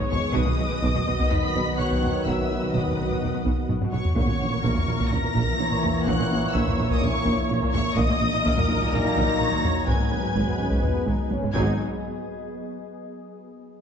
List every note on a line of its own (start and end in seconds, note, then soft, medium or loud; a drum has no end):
0.00 0.32 D#3 medium
0.00 0.32 G#3 medium
0.00 0.08 G#3 loud
0.00 0.32 B3 medium
0.00 0.32 D#4 medium
0.00 0.32 G#4 medium
0.00 0.35 C#5 medium
0.00 0.32 D#5 medium
0.00 taiko loud
0.11 0.17 G#1 medium
0.11 0.16 G#2 medium
0.11 0.19 G#4 medium
0.11 0.35 C#5 loud
0.11 0.34 C#6 loud
0.11 taiko low medium
0.34 0.40 B1 medium
0.34 0.40 B1 loud
0.34 0.39 B2 loud
0.34 3.89 D#3 medium
0.34 4.13 D#3 medium
0.34 3.89 D#3 loud
0.34 3.89 F#3 loud
0.34 4.13 B3 medium
0.34 3.89 B3 loud
0.34 0.43 B3 medium
0.34 4.16 F#4 medium
0.34 0.84 B4 medium
0.34 1.29 D#5 medium
0.34 4.17 F#5 medium
0.34 1.31 D#6 loud
0.34 taiko loud
0.47 0.52 B2 medium
0.47 0.55 D#4 medium
0.58 0.64 B1 medium
0.58 0.63 B2 medium
0.58 0.67 D#4 medium
0.71 0.76 B2 medium
0.71 0.79 B4 medium
0.83 0.88 B1 loud
0.83 0.88 B2 loud
0.83 0.91 B3 loud
0.83 1.76 D#5 loud
0.83 taiko medium
0.95 1.00 B2 medium
0.95 1.03 D#4 medium
0.95 taiko low medium
1.07 1.12 B1 medium
1.07 1.12 B2 medium
1.07 1.15 B4 medium
1.19 1.24 B2 medium
1.19 1.27 B3 loud
1.19 taiko medium
1.30 1.35 B1 medium
1.30 1.36 B1 medium
1.30 1.35 B2 medium
1.30 1.39 D#4 medium
1.30 1.77 B5 loud
1.30 1.78 B6 loud
1.30 taiko low medium
1.42 1.47 B2 medium
1.42 1.51 B4 medium
1.54 1.59 B1 medium
1.54 1.60 B1 medium
1.54 1.59 B2 medium
1.54 1.63 B3 loud
1.54 taiko medium
1.78 1.83 B1 medium
1.78 1.84 B1 medium
1.78 1.83 B2 medium
1.78 1.86 D#4 medium
1.78 2.25 C#5 medium
1.78 2.26 F#5 loud
1.78 2.25 F#6 medium
1.90 1.95 B2 medium
1.90 1.98 B3 loud
1.90 taiko medium
2.02 2.07 B1 medium
2.02 2.08 B1 medium
2.02 2.07 B2 medium
2.02 2.10 B4 medium
2.02 taiko low medium
2.25 2.31 B1 medium
2.25 2.31 B2 medium
2.25 2.34 B3 loud
2.25 3.93 B4 medium
2.25 2.72 E5 medium
2.25 2.74 E6 medium
2.25 taiko loud
2.39 2.44 B2 medium
2.39 2.46 D#4 medium
2.50 2.55 B1 medium
2.50 2.56 B2 medium
2.50 2.58 D#4 medium
2.62 2.67 B2 medium
2.62 2.69 B4 medium
2.73 2.78 B1 medium
2.73 2.79 B1 medium
2.73 2.79 B2 medium
2.73 2.81 B3 loud
2.73 3.69 D#5 medium
2.73 3.69 D#6 medium
2.73 taiko medium
2.86 2.92 B2 medium
2.86 2.93 D#4 medium
2.86 taiko low medium
2.97 3.02 B1 medium
2.97 3.03 B1 medium
2.97 3.04 B2 medium
2.97 3.05 B4 medium
3.10 3.15 B2 medium
3.10 3.17 B3 loud
3.10 taiko medium
3.21 3.26 B1 medium
3.21 3.27 B1 medium
3.21 3.27 B2 medium
3.21 3.29 D#4 medium
3.21 taiko low medium
3.33 3.38 B2 medium
3.33 3.41 B4 medium
3.45 3.50 B1 medium
3.45 3.50 B2 medium
3.45 3.53 B3 loud
3.45 taiko medium
3.69 3.74 B1 medium
3.69 3.74 B2 medium
3.69 3.77 D#4 medium
3.69 taiko low-mid medium
3.81 3.86 B2 medium
3.81 3.88 B3 loud
3.81 taiko low-mid loud
3.91 3.97 B1 medium
3.91 3.98 B1 medium
3.91 3.97 B2 medium
3.91 4.00 B4 medium
3.91 4.14 C#5 medium
3.91 4.15 C#6 medium
3.91 taiko low-mid medium
4.05 taiko low medium
4.15 4.21 A#1 medium
4.15 7.93 A#2 medium
4.15 4.21 A#2 loud
4.15 7.94 E3 medium
4.15 7.98 E3 medium
4.15 7.93 A#3 medium
4.15 4.23 A#3 medium
4.15 9.88 A#3 medium
4.15 7.93 E4 medium
4.15 9.88 A#4 medium
4.15 5.09 C#5 medium
4.15 4.61 C#5 medium
4.15 7.97 E5 medium
4.15 5.10 C#6 loud
4.15 taiko loud
4.28 4.33 A#2 medium
4.28 4.36 C#4 medium
4.40 4.45 A#1 medium
4.40 4.45 A#2 medium
4.40 4.48 C#4 medium
4.52 4.57 A#2 medium
4.52 4.60 A#4 medium
4.63 4.69 A#1 medium
4.63 4.68 A#2 loud
4.63 4.72 A#3 loud
4.63 5.57 A#4 medium
4.63 taiko medium
4.75 4.80 A#2 medium
4.75 4.85 C#4 medium
4.75 taiko low medium
4.87 4.93 A#1 medium
4.87 4.92 A#2 medium
4.87 4.96 A#4 medium
4.98 5.04 A#2 medium
4.98 5.08 A#3 loud
4.98 taiko medium
5.10 5.17 A#1 medium
5.10 5.16 A#2 medium
5.10 5.19 C#4 medium
5.10 6.04 A#5 loud
5.10 6.07 A#6 loud
5.10 taiko low medium
5.22 5.27 A#2 medium
5.22 5.32 A#4 medium
5.35 5.40 A#1 medium
5.35 5.41 A#1 medium
5.35 5.40 A#2 medium
5.35 5.44 A#3 loud
5.35 taiko medium
5.59 5.64 A#1 medium
5.59 5.64 A#2 medium
5.59 5.67 C#4 medium
5.59 7.94 C#5 medium
5.70 5.75 A#2 loud
5.70 5.79 A#3 loud
5.70 taiko medium
5.83 5.88 A#1 medium
5.83 5.89 A#1 medium
5.83 5.88 A#2 medium
5.83 5.92 A#4 medium
5.83 taiko low medium
6.06 6.12 A#1 medium
6.06 6.11 A#2 loud
6.06 6.15 A#3 loud
6.06 6.55 F#5 loud
6.06 6.54 F#6 loud
6.06 taiko loud
6.19 6.24 A#2 medium
6.19 6.26 C#4 medium
6.31 6.36 A#1 medium
6.31 6.35 A#2 medium
6.31 6.38 C#4 medium
6.42 6.47 A#2 medium
6.42 6.50 A#4 medium
6.54 6.59 A#1 medium
6.54 6.60 A#1 loud
6.54 6.59 A#2 loud
6.54 6.61 A#3 loud
6.54 6.91 E5 medium
6.54 6.90 E6 medium
6.54 taiko medium
6.66 6.72 A#2 medium
6.66 6.74 C#4 medium
6.66 taiko low medium
6.78 6.83 A#1 medium
6.78 6.84 A#1 medium
6.78 6.84 A#2 medium
6.78 6.86 A#4 medium
6.89 6.95 A#2 loud
6.89 6.97 A#3 loud
6.89 7.02 D#5 medium
6.89 7.03 D#6 loud
6.89 taiko medium
7.01 7.07 A#1 medium
7.01 7.08 A#2 medium
7.01 7.09 C#4 medium
7.01 7.50 C#5 medium
7.01 7.51 C#6 loud
7.01 taiko low medium
7.13 7.19 A#2 medium
7.13 7.21 A#4 medium
7.25 7.30 A#1 medium
7.25 7.31 A#1 loud
7.25 7.31 A#2 loud
7.25 7.33 A#3 loud
7.25 taiko medium
7.49 7.54 A#1 medium
7.49 7.55 A#1 medium
7.49 7.55 A#2 medium
7.49 7.57 C#4 medium
7.61 7.67 A#2 loud
7.61 7.69 A#3 loud
7.61 taiko loud
7.73 7.79 A#1 medium
7.73 7.78 A#2 medium
7.73 7.81 A#4 medium
7.73 7.96 C#5 loud
7.73 7.96 C#6 loud
7.73 taiko low medium
7.96 8.02 A#1 loud
7.96 8.02 A#2 loud
7.96 9.84 A#2 loud
7.96 8.05 D#3 loud
7.96 11.37 F#3 loud
7.96 11.54 F#3 medium
7.96 9.85 A#3 loud
7.96 10.27 D#4 loud
7.96 8.92 D#5 loud
7.96 8.44 D#5 loud
7.96 11.53 D#5 medium
7.96 8.93 D#6 loud
7.96 taiko loud
8.09 8.14 A#2 medium
8.09 8.17 F#3 medium
8.21 8.26 A#1 medium
8.21 8.27 A#1 medium
8.21 8.26 A#2 medium
8.21 8.29 F#3 medium
8.33 8.38 A#2 medium
8.33 8.41 D#4 medium
8.45 8.50 A#1 medium
8.45 8.50 A#1 loud
8.45 8.50 A#2 loud
8.45 8.52 D#3 loud
8.45 9.38 A#4 loud
8.45 taiko loud
8.57 8.62 A#2 medium
8.57 8.64 F#3 medium
8.57 taiko low medium
8.68 8.74 A#1 medium
8.68 8.74 A#2 medium
8.68 8.76 D#4 medium
8.80 8.86 A#2 loud
8.80 8.88 D#3 loud
8.80 taiko medium
8.92 8.97 A#1 medium
8.92 8.98 A#1 medium
8.92 8.98 A#2 medium
8.92 9.00 F#3 medium
8.92 9.88 A#5 loud
8.92 9.88 A#6 loud
8.92 taiko low medium
9.05 9.10 A#2 medium
9.05 9.12 D#4 medium
9.16 9.21 A#1 medium
9.16 9.22 A#1 loud
9.16 9.21 A#2 loud
9.16 9.24 D#3 loud
9.16 taiko medium
9.39 9.45 A#1 medium
9.39 9.45 A#2 medium
9.39 9.47 F#3 medium
9.39 9.87 C#5 medium
9.52 9.57 A#2 medium
9.52 9.59 D#3 loud
9.52 taiko medium
9.64 9.69 A#1 medium
9.64 9.70 A#1 medium
9.64 9.69 A#2 medium
9.64 9.71 D#4 medium
9.64 taiko low medium
9.87 9.92 G#1 medium
9.87 9.93 G#1 medium
9.87 11.37 G#2 medium
9.87 9.93 G#2 medium
9.87 9.95 G#3 loud
9.87 10.28 B3 medium
9.87 11.53 B3 medium
9.87 11.53 G#4 medium
9.87 11.54 B4 medium
9.87 11.28 G#5 loud
9.87 11.28 G#6 loud
9.87 taiko loud
10.00 10.05 G#2 medium
10.00 10.07 B3 medium
10.11 10.16 G#1 medium
10.11 10.17 G#1 medium
10.11 10.16 G#2 medium
10.11 10.19 B3 medium
10.23 10.28 G#2 medium
10.23 10.30 F#4 medium
10.35 10.40 G#1 medium
10.35 10.40 G#2 medium
10.35 10.43 G#3 loud
10.35 10.57 B3 medium
10.35 taiko medium
10.47 10.52 G#2 medium
10.47 10.55 B3 medium
10.47 taiko low medium
10.59 10.64 G#1 medium
10.59 10.64 G#2 medium
10.59 10.83 C#4 medium
10.59 10.66 F#4 medium
10.70 10.75 G#2 medium
10.70 10.78 G#3 loud
10.70 taiko medium
10.82 10.88 G#1 medium
10.82 10.88 G#2 medium
10.82 11.07 B3 medium
10.82 10.90 B3 medium
10.82 taiko low medium
10.94 11.00 G#2 medium
10.94 11.02 F#4 medium
11.06 11.11 G#1 medium
11.06 11.12 G#2 medium
11.06 11.14 G#3 loud
11.06 11.30 D#4 medium
11.06 taiko medium
11.30 11.35 G#1 medium
11.30 11.36 G#1 medium
11.30 11.36 G#2 medium
11.30 11.38 B3 medium
11.30 11.55 C#4 medium
11.30 taiko high medium
11.42 11.48 G#2 medium
11.42 11.50 G#3 loud
11.42 taiko low-mid medium
11.54 11.81 G#1 medium
11.54 11.75 G#1 medium
11.54 11.74 G#2 medium
11.54 11.82 G#2 medium
11.54 11.81 F#3 medium
11.54 11.74 F#3 medium
11.54 11.74 B3 medium
11.54 11.74 D#4 medium
11.54 11.81 D#4 medium
11.54 11.81 G#5 medium
11.54 11.81 G#6 medium
11.54 taiko loud